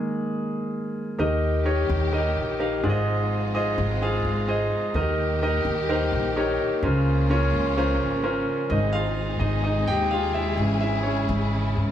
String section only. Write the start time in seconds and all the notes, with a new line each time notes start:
1.20 A#2 D#3 G3 D#4 G4
2.83 C3 F3 G#3 F4
4.95 A#2 D#3 G3 G4
6.82 C#3 F3 A#3 C#4 F4
8.69 C3 D#3 G#3 D#4 G#4
10.58 C#3 E3 E4